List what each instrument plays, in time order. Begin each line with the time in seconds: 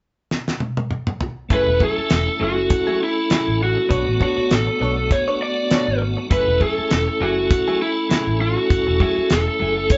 0.31 snare
0.48 snare
0.60 high tom
0.77 high tom
0.91 mid tom
1.07 mid tom
1.21 floor tom
1.49 fingered electric bass F#1, clean electric guitar F#3 A3 E4 G#4, tonewheel organ A3 C#4 E4 A4, kick, closed hi-hat
1.54 lead electric guitar B4
1.67 fingered electric bass E1, muted clean electric guitar stroke
1.80 clean electric guitar F#3 A3 E4 G#4, lead electric guitar A4, kick
1.97 clean electric guitar A3 E4 G#4, muted fingered electric bass stroke
2.10 fingered electric bass E1, snare, closed hi-hat
2.27 muted clean electric guitar stroke
2.40 fingered electric bass F#1, clean electric guitar F#3 A3 E4 G#4
2.44 lead electric guitar F#4
2.58 muted clean electric guitar stroke
2.70 muted clean electric guitar stroke, kick, closed hi-hat
2.87 clean electric guitar F#3 A3 E4 G#4
3.00 lead electric guitar E4, muted clean electric guitar stroke
3.30 clean electric guitar F#3 A3 E4 G#4, snare, closed hi-hat
3.47 fingered electric bass A1, muted clean electric guitar stroke
3.61 lead electric guitar F#4, muted clean electric guitar stroke
3.77 muted clean electric guitar stroke
3.89 fingered electric bass B1, tonewheel organ A3 B3 D4, clean electric guitar B3 D4 A4 C#5, kick, closed hi-hat
3.93 tonewheel organ F#4
4.06 fingered electric bass A1, muted clean electric guitar stroke
4.20 clean electric guitar B3 D4 A4 C#5, lead electric guitar F#4, kick
4.37 clean electric guitar D4 A4 C#5, muted fingered electric bass stroke
4.51 fingered electric bass A1, lead electric guitar A4, snare, closed hi-hat
4.67 muted clean electric guitar stroke
4.80 fingered electric bass B1, clean electric guitar B3 D4 A4 C#5
4.97 muted clean electric guitar stroke
5.10 lead electric guitar C#5, muted clean electric guitar stroke, kick, closed hi-hat
5.28 clean electric guitar B3 D4 A4 C#5
5.41 lead electric guitar D5, muted clean electric guitar stroke
5.71 clean electric guitar B3 D4 A4 C#5, snare, closed hi-hat
5.88 fingered electric bass G#1, muted clean electric guitar stroke
6.01 muted clean electric guitar stroke
6.17 muted clean electric guitar stroke
6.29 fingered electric bass F#1, clean electric guitar F#3 A3 E4 G#4, tonewheel organ A3 C#4 E4 A4, lead electric guitar B4, kick, closed hi-hat
6.47 fingered electric bass E1, muted clean electric guitar stroke
6.60 clean electric guitar F#3 A3 E4 G#4, lead electric guitar A4, kick
6.76 clean electric guitar A3 E4 G#4, muted fingered electric bass stroke
6.91 fingered electric bass E1, snare, closed hi-hat
7.08 muted clean electric guitar stroke
7.21 fingered electric bass F#1, clean electric guitar F#3 A3 E4 G#4, lead electric guitar F#4
7.37 muted clean electric guitar stroke
7.50 muted clean electric guitar stroke, kick, closed hi-hat
7.68 clean electric guitar F#3 A3 E4 G#4
7.81 lead electric guitar E4, muted clean electric guitar stroke
8.10 clean electric guitar F#3 A3 E4 G#4, snare, closed hi-hat
8.27 fingered electric bass A1, muted clean electric guitar stroke
8.40 lead electric guitar F#4, muted clean electric guitar stroke
8.57 muted clean electric guitar stroke
8.70 fingered electric bass F#1, kick, closed hi-hat
8.87 fingered electric bass E1, muted clean electric guitar stroke
9.00 clean electric guitar F#3 A3 E4 G#4, lead electric guitar F#4, kick
9.17 clean electric guitar A3 E4 G#4, muted fingered electric bass stroke
9.30 fingered electric bass E1, lead electric guitar A4, snare, closed hi-hat
9.47 muted clean electric guitar stroke
9.60 fingered electric bass F#1, clean electric guitar F#3 A3 E4 G#4
9.77 muted clean electric guitar stroke
9.90 lead electric guitar C#5, muted clean electric guitar stroke, kick, closed hi-hat